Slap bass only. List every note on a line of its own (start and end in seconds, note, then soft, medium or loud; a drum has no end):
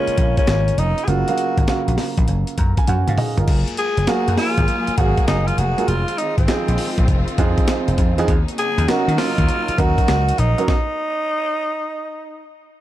0.08 muted slap bass stroke soft
0.18 0.33 A#1 medium
0.48 0.70 G#1 loud
0.78 0.93 F1 medium
1.08 1.23 F#1 loud
1.58 1.65 G#1 medium
1.68 muted slap bass stroke soft
1.88 1.95 A#1 medium
2.18 2.25 A#1 medium
2.28 2.43 F#1 medium
2.58 2.73 F#2 medium
2.88 3.03 F#2 loud
3.08 3.16 G#2 medium
3.38 3.45 G1 medium
3.48 3.63 F#1 loud
3.97 4.05 F#1 medium
4.08 muted slap bass stroke soft
4.28 4.35 F#2 medium
4.58 4.65 G#1 medium
4.88 muted slap bass stroke soft
4.98 5.13 G#1 medium
5.28 5.50 F#1 medium
5.58 5.73 F1 medium
5.88 6.03 F1 loud
6.38 6.46 G#1 loud
6.49 muted slap bass stroke soft
6.68 6.76 A#1 medium
6.98 7.05 A#1 loud
7.08 7.23 F1 loud
7.38 7.53 F2 loud
7.88 7.96 F1 medium
7.98 8.13 F2 loud
8.18 8.26 E2 medium
8.28 8.43 D#2 loud
8.78 8.85 D#2 loud
8.88 muted slap bass stroke soft
9.08 9.15 D#3 loud
9.38 9.46 D#2 loud
9.69 muted slap bass stroke medium
9.79 9.93 D#2 medium
10.09 10.31 C#2 loud
10.39 10.53 A#1 medium